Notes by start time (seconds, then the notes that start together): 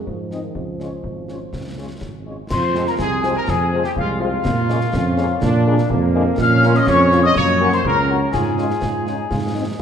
0.07 G#2 F3, concert bass drum
0.31 G#3 C4 D#4 D#5, snare
0.44 D#3
0.55 C#2 F3, concert bass drum
0.80 G#3 C#4 F4 C#5, snare
1.04 G#1, concert bass drum
1.28 G#3 C#4 F4 C#5, snare
1.52 C#2, concert bass drum, snare
1.78 G#3 C#4 F4 C#5
2.01 G#1, concert bass drum, snare
2.26 G#3 C#4 F4 C#5
2.50 F2 F4 C5 C6, concert bass drum, snare, crash
2.75 F3 G#3 C4, snare
2.87 A#4 A#5, snare
2.97 C2 C4 G#4 G#5, concert bass drum, snare
3.23 F3 G#3 C4, snare
3.35 A#4 A#5
3.47 F2 G#4 G#5, concert bass drum, snare
3.72 F3 G#3 C4
3.84 G4 G5, snare
3.96 C2 G#3 F4 F5, concert bass drum
4.20 F3 G#3 C4 F4 F5
4.44 A#2 A#3, concert bass drum, snare, crash
4.69 G#3 A#3 C#4, snare
4.81 snare
4.92 F2 C#4, concert bass drum, snare
5.17 G#3 A#3 C#4, snare
5.40 A#2 D4, concert bass drum, snare
5.67 G#3 A#3 D4
5.78 snare
5.90 F2 A#3, concert bass drum
6.15 G#3 A#3 D4
6.38 A#2 C#4 F5 F6, concert bass drum, snare, crash
6.63 A#3 C#4 F4, snare
6.75 D#5 D#6, snare
6.87 F2 C#5 C#6, concert bass drum, snare
7.12 A#3 C#4 F4, snare
7.24 D#5 D#6
7.35 F#2 A#3 C#5 C#6, concert bass drum, snare
7.61 A#3 C#4 F#4
7.72 C5 C6, snare
7.84 C#2 C#4 A#4 A#5, concert bass drum
8.10 A#3 C#4 F#4
8.33 G#2 F4 G#4 G#5, concert bass drum, snare, crash
8.58 G#3 C#4 F4, snare
8.70 snare
8.81 G#2 F4, concert bass drum, snare
9.07 G#3 C#4 D#4 F4, snare
9.29 G#2 F4, concert bass drum, snare
9.54 G#3 C4 D#4
9.78 D#2 F4